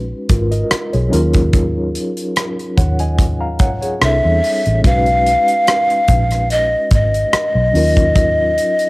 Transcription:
0.00 0.12 A#1 medium
0.00 1.07 G#3 medium
0.00 1.08 C#4 medium
0.00 1.08 D#4 medium
0.00 0.26 F#4 medium
0.00 0.27 B4 medium
0.29 0.62 G#1 medium
0.29 0.51 F4 soft
0.29 0.51 A#4 medium
0.29 kick medium
0.29 closed hi-hat medium
0.51 0.91 A#4 medium
0.51 0.91 D#5 medium
0.51 closed hi-hat soft
0.71 muted fingered electric bass stroke soft
0.71 cross-stick medium
0.71 closed hi-hat medium
0.93 1.09 B1 medium
0.93 1.33 G#4 soft
0.93 1.32 C#5 medium
0.93 closed hi-hat soft
1.09 1.95 D#2 medium
1.09 3.96 F#3 medium
1.09 3.97 C#4 medium
1.09 3.97 D#4 medium
1.09 3.98 F4 medium
1.13 2.75 A#4 medium
1.13 closed hi-hat medium
1.33 kick medium
1.33 closed hi-hat medium
1.53 kick medium
1.53 closed hi-hat medium
1.95 closed hi-hat medium
2.17 closed hi-hat soft
2.36 cross-stick medium
2.36 closed hi-hat medium
2.59 closed hi-hat soft
2.77 3.60 D#2 medium
2.77 2.99 C#5 soft
2.77 2.99 F#5 medium
2.77 kick medium
2.77 closed hi-hat medium
2.99 3.40 D#5 medium
2.99 3.39 G#5 medium
2.99 closed hi-hat soft
3.18 kick medium
3.18 closed hi-hat medium
3.41 3.59 F5 medium
3.41 3.59 A#5 medium
3.59 3.93 C#2 medium
3.59 3.80 C#5 medium
3.59 3.81 F#5 medium
3.59 kick medium
3.59 closed hi-hat medium
3.82 4.22 G#4 soft
3.82 4.21 C#5 medium
3.82 closed hi-hat soft
3.99 4.20 C2 medium
3.99 4.83 G3 medium
3.99 4.84 C4 soft
3.99 4.84 D4 medium
3.99 4.84 E4 soft
3.99 4.85 A4 medium
3.99 cross-stick medium
3.99 closed hi-hat medium
4.04 4.81 E5 medium
4.25 4.40 E2 medium
4.44 open hi-hat medium
4.66 4.81 A1 medium
4.66 closed hi-hat soft
4.82 5.35 B1 medium
4.82 7.69 G#3 medium
4.82 7.70 C#4 medium
4.82 7.70 D#4 medium
4.82 7.71 F#4 medium
4.82 6.53 F5 loud
4.82 kick medium
4.82 closed hi-hat medium
4.87 7.71 B4 medium
5.06 closed hi-hat soft
5.27 closed hi-hat medium
5.48 closed hi-hat soft
5.67 cross-stick loud
5.67 closed hi-hat medium
5.90 closed hi-hat soft
6.08 6.74 A#1 medium
6.08 kick medium
6.08 closed hi-hat medium
6.31 cross-stick soft
6.31 closed hi-hat soft
6.50 6.92 D#5 medium
6.50 closed hi-hat medium
6.91 7.24 G#1 medium
6.91 8.89 D#5 medium
6.91 kick medium
6.91 closed hi-hat medium
7.14 closed hi-hat soft
7.33 muted fingered electric bass stroke soft
7.33 cross-stick loud
7.33 closed hi-hat medium
7.55 7.70 B1 medium
7.72 8.57 D#2 medium
7.72 8.89 F#3 medium
7.72 8.89 C#4 medium
7.72 8.89 D#4 medium
7.72 8.89 F4 medium
7.72 open hi-hat medium
7.77 8.89 A#4 medium
7.97 kick medium
7.97 closed hi-hat soft
8.15 kick medium
8.15 closed hi-hat medium
8.58 closed hi-hat medium
8.79 closed hi-hat soft

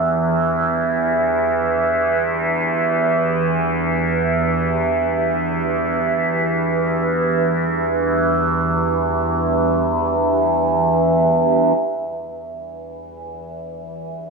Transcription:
0.00 11.77 E2 medium
0.00 11.77 E3 medium
0.00 14.30 E3 medium
0.00 14.30 D4 medium
0.00 14.30 G4 medium
0.00 14.30 B4 medium
11.78 14.30 E2 medium
11.78 14.30 E3 medium

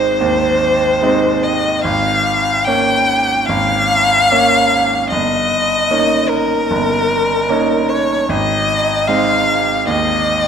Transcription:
0.00 1.84 G#1 medium
0.00 0.15 G#3 soft
0.00 0.15 C4 soft
0.00 0.16 D#4 medium
0.00 1.45 C5 medium
0.21 0.99 D#2 medium
1.02 1.80 G#3 soft
1.02 1.81 C4 soft
1.02 1.81 D#4 medium
1.44 1.84 D#5 medium
1.84 2.63 G#1 medium
1.84 2.66 F5 loud
2.64 3.44 A#3 soft
2.64 3.44 C#4 soft
2.64 3.47 G5 medium
3.45 4.28 G#1 medium
3.45 5.09 F5 loud
4.31 5.07 A#3 soft
4.31 5.07 C#4 soft
5.10 5.88 G1 medium
5.10 6.30 D#5 loud
5.90 6.66 A#3 soft
5.90 6.67 C#4 soft
5.90 6.67 D#4 soft
6.29 7.91 A#4 medium
6.71 7.47 G1 medium
7.49 8.24 A#3 soft
7.49 8.24 C#4 soft
7.49 8.25 D#4 soft
7.89 8.31 C#5 medium
8.29 9.05 G#1 medium
8.29 9.09 D#5 medium
9.08 9.82 G#3 soft
9.08 9.83 C4 soft
9.08 9.83 D#4 soft
9.08 9.86 F5 medium
9.87 10.48 D#2 medium
9.87 10.48 D#5 loud

